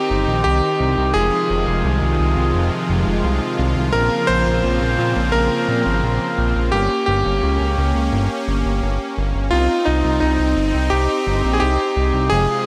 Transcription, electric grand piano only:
Already playing: G4
0.44 G4
1.14 G#4
3.93 A#4
4.27 C5
5.32 A#4
6.72 G4
7.06 G4
9.51 F4
9.85 D#4
10.20 D#4
10.90 G4
11.53 G#4
11.60 G4
12.30 G#4

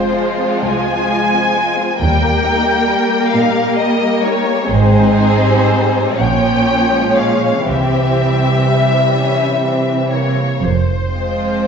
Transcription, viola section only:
Already playing: F3 G#3
2.01 G3 A#3
4.68 G#3 C4
5.42 G3
6.18 F3 A#3
6.92 G#3
7.65 E3 G3
11.11 F3 G#3

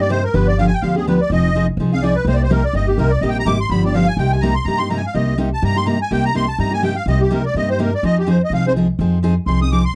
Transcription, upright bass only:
Already playing: G2
0.34 G1
0.83 D2
1.30 F1
1.77 C2
2.25 C2
2.73 G1
2.98 C2
3.21 A#1
3.45 G#1
3.69 G1
4.17 C2
4.65 G2
5.15 C2
5.62 G2
6.11 C2
6.58 G2
7.06 C2
7.54 G2
8.03 F2
8.50 C2
8.99 F2
9.46 C2

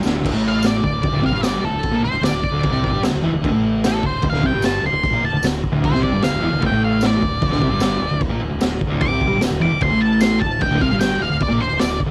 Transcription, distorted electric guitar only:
0.02 D2 D3
0.21 D2 D3
0.32 A2 A3
0.82 D2
1.02 D2
1.12 D2 D3
1.21 C3 C4
1.32 G2 G3
1.60 D2
1.70 D2
1.92 A#2 A#3
2.01 D2
2.12 D2
2.22 D2
2.52 D2 D3
2.71 C3 C4
2.91 G2 G3
3.03 D2
3.11 D2
3.23 E2 E3
3.32 D2
3.42 D2 D3
3.51 A2 A3
4.02 D2
4.22 D2
4.33 D2 D3
4.43 C3 C4
4.53 G2 G3
4.82 D2
4.93 D2
5.13 A#2 A#3
5.23 D2
5.33 D2
5.44 D2
5.72 D2 D3
5.93 C3 C4
6.12 G2 G3
6.23 D2
6.30 D2
6.40 E2 E3
6.50 D2
6.59 D2 D3
6.70 A2 A3
7.19 D2
7.42 D2
7.49 D2 D3
7.60 C3 C4
7.70 G2 G3
7.99 D2
8.10 D2
8.29 A#2 A#3
8.40 D2
8.50 D2
8.59 D2
8.87 D2 D3
9.09 C3 C4
9.27 G2 G3
9.39 D2
9.50 D2
9.60 E2 E3
9.71 D2
9.81 D2 D3
9.90 A2 A3
10.40 D2
10.59 D2
10.71 D2 D3
10.80 C3 C4
10.91 G2 G3
11.20 D2
11.30 D2
11.49 A#2 A#3
11.59 D2
11.68 D2
11.78 D2
12.06 D2

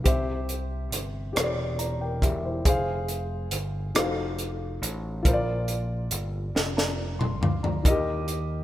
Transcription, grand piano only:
0.04 C3 G4 C5 E5
1.33 G4 C5 C#5
1.43 D5
1.79 D5 A#5
2.01 A#4 G5
2.23 G4 E5
2.46 E4 C5
2.65 G#4 C5
2.69 F5
3.95 D#4 F#4 A4 C5 F5
5.23 A#2 F4 A#4
5.27 C5
5.33 D5
6.77 D5 A#5
7.19 C6
7.41 F5 D6
7.63 D5 A#5
7.83 D#3 F4 A#4
7.88 G4 D#5

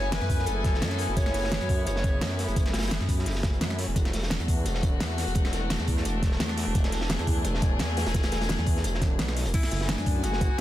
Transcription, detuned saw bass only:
Already playing: F#1
0.21 F#2
0.47 F#1
0.82 F#2
1.09 F#1
1.34 F#1
1.61 F#2
1.87 F#1
2.22 F#2
2.48 F#1
2.74 F#1
3.01 F#2
3.26 F#1
3.61 F#2
3.88 E1
4.13 E1
4.40 E2
4.66 E1
5.01 E2
5.27 E1
5.53 E1
5.80 E2
6.05 E1
6.40 E2
6.67 E1
6.92 E1
7.19 E2
7.45 E1
7.80 E2
8.06 E1
8.32 E1
8.59 E2
8.84 E1
9.19 B1
9.46 E1
9.72 F#1
9.98 F#2
10.24 F#1

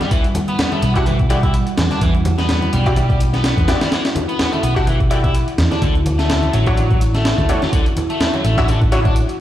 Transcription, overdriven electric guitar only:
0.01 G3
0.11 E3
0.49 B3
0.72 A3
0.82 B3
0.96 D4
1.06 E3
1.30 D3
1.43 E4
1.91 D4
2.01 E3
2.38 B3
2.73 G3
3.33 B3
3.81 G3
3.92 E3
4.29 B3
4.52 A3
4.63 B3
4.76 D4
4.87 E3
5.11 D3
5.24 E4
5.71 D4
5.82 D3
6.19 A3
6.54 F#3
7.15 A3
7.62 F#3
7.73 D3
8.10 A3
8.34 F#3
8.44 A3
8.58 C#4
8.68 D3
8.92 C#3
9.05 D4

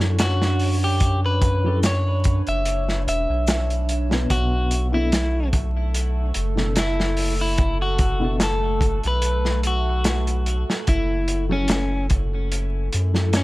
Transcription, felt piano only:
0.00 F#3 C#4 E4 A4
1.64 F#3 C#4 E4 A4
4.10 B2 B3 D4
4.14 B4
4.92 B2 B3 D4
4.96 A4
6.56 B2 B3 D4
6.60 A4
8.20 B2 B3 D4
8.24 A4
11.49 F#3 C#4 E4
11.53 A4
13.14 F#3 C#4 E4
13.18 A4

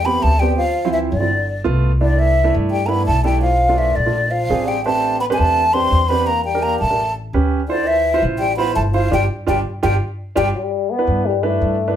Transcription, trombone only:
0.04 B3
0.20 A3
0.39 G3
0.56 F3
0.92 E3
1.10 D3
2.01 D3
2.18 E3
2.71 G3
2.86 A#3 B3
3.07 A3
3.24 G3
3.41 F3
3.77 E3
3.95 D3
4.30 F3
4.65 G3
4.83 A3
5.19 B3
5.32 G#3
5.38 A3
5.73 C4
6.09 B3
6.27 A#3
6.45 G3
6.63 A#3
6.80 A3
7.69 D3
7.87 E3
8.39 G3
8.57 B3
8.75 A3
8.92 F3
9.11 G3
9.48 G3
9.84 G3
10.36 G3
10.55 G3
10.90 B3
11.26 G3
11.44 A3

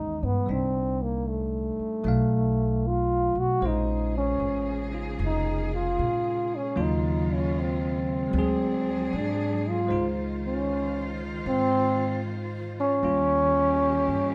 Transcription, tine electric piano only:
Already playing: E3 G#3 B3 C#4 D#4
0.46 A#2 G3 D4
0.51 D#4
2.04 F#3 A3 D#4
2.08 F5
3.61 G#3 C#4 C5
3.65 F4
4.92 C#4 D#4 F4
6.76 C#3 F#3 A#3 F4
8.28 F#3 G#3
8.35 C4 G#4
9.87 G#3 D#4 C5
9.92 F4
13.03 G3 A#3 C#4 F4

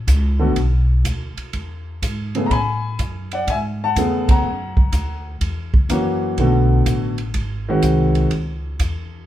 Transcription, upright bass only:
0.07 C#2
0.56 B1
1.04 D2
1.37 muted upright bass stroke
1.53 E2
2.02 G#2
2.51 A2
2.99 F#2
3.47 G#2
3.96 E2
4.43 F#2
4.92 D2
5.41 E2
5.89 F#2
6.38 B1
6.86 A1
7.34 G#1
7.82 C2
8.31 C#2
8.79 E2

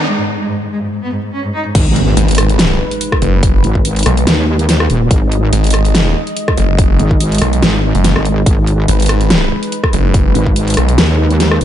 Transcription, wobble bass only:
1.75 G#1
3.64 G#1
4.27 D#2
4.90 D#1
5.11 G#1
7.00 G#1
7.62 G#1
8.16 G#1
8.46 G#1
10.35 G#1
10.98 D#2
11.61 D#1

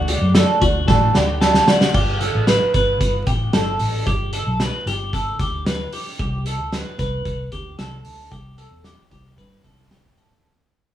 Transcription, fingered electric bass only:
Already playing: D2
0.21 F#2
0.62 D2
0.88 A2
1.15 D2
1.94 G1
2.35 A1
2.74 G1
3.01 G1
3.27 A1
3.54 G1
3.80 A1
4.07 G1
4.46 B1
4.86 G1
5.40 D2
6.20 C2
6.59 D2
6.99 C2
7.26 C2
7.52 D2
7.78 C2
8.05 D2
8.32 C2
8.71 E2
9.11 C2
9.38 G2
9.64 C2

